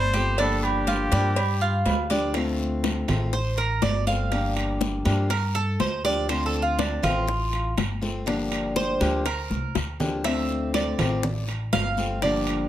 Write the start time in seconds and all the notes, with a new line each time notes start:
Already playing: G1 D4 C5
0.13 A3 C4 F4 G4, cowbell, high conga, short guiro
0.38 D3 F3 A#3 D4 G4 A4, cowbell, high conga, low agogo, long guiro
0.63 G4, high conga, low agogo
0.87 F4, cowbell, high conga, short guiro
1.11 G2 F3 A#3 D4 G4 D5, cowbell, high conga, low agogo, short guiro
1.36 muted steel-string acoustic guitar stroke, cowbell, high conga, low agogo, long guiro
1.61 F4, high conga
1.85 D2, cowbell, high conga, low timbale, low agogo, short guiro
2.10 F3 A#3 D4 G4 D5, cowbell, high conga, short guiro
2.34 D3 A3 C4 F4, high bongo, high conga, high timbale, long guiro
2.59 high bongo, high conga
2.84 high bongo, high conga, high timbale, short guiro
3.08 A1 A3 C4 F4, high conga, low conga, high timbale, short guiro
3.33 C5, muted steel-string acoustic guitar stroke, high bongo, high conga, long guiro
3.57 A#4, high bongo, high conga, high timbale
3.82 G1 D5, high bongo, low bongo, high conga, high timbale, low timbale, short guiro
4.07 A3 C4 F4 F5, high bongo, high conga, short guiro
4.31 D3 F3 A#3 D4 G4, high bongo, high timbale, long guiro
4.56 high bongo, high conga, high timbale
4.81 high bongo, high conga, short guiro
5.05 G2 F3 A#3 D4 G4, high conga, high timbale, short guiro
5.30 A#4, muted steel-string acoustic guitar stroke, high bongo, high conga, high timbale, long guiro
5.55 A4, high bongo, high conga
5.80 D2 C5, high bongo, low bongo, high conga, high timbale, low timbale, short guiro
6.04 F3 A#3 D4 G4 D5, high bongo, high conga, short guiro
6.29 D3 A3 C4 F4 C5, high bongo, high conga, high timbale, long guiro
6.46 A4
6.54 high bongo, high conga
6.62 F4
6.79 D4, high bongo, high conga, high timbale, short guiro
7.02 A1 A3 C4 F4, high conga, low conga, high timbale, short guiro
7.27 muted steel-string acoustic guitar stroke, high bongo, high conga, long guiro
7.53 high bongo, high conga, high timbale
7.77 G1, high bongo, low bongo, high conga, high timbale, short guiro
8.01 A3 C4 F4, high bongo, high conga, short guiro
8.26 D3 F3 A#3 D4 G4, high bongo, high timbale, long guiro
8.52 high bongo, high conga, high timbale
8.76 C5, high bongo, high conga, short guiro
9.01 D2 F3 A#3 D4 G4, high conga, high timbale, short guiro
9.26 A#4, muted steel-string acoustic guitar stroke, high bongo, high conga, high timbale, long guiro
9.50 C2, high bongo, high conga
9.75 D2, high bongo, low bongo, high timbale, short guiro
10.00 F3 A#3 D4 G4, high bongo, low conga, short guiro
10.24 D3 A3 C4 F4 E5, high bongo, high conga, high timbale, long guiro
10.49 high bongo, high conga
10.74 D5, high bongo, high conga, high timbale, short guiro
10.98 A1 A3 C4 F4, high conga, low conga, high timbale, short guiro
11.23 muted steel-string acoustic guitar stroke, high bongo, high conga, low conga, long guiro
11.48 high bongo, high conga, high timbale
11.73 G1 F5, high bongo, low bongo, high conga, high timbale, low timbale, short guiro
11.97 A3 C4 F4, high bongo, high conga, short guiro
12.22 D3 F3 A#3 D4 G4 D5, high bongo, high conga, high timbale, long guiro
12.47 high bongo, high conga, high timbale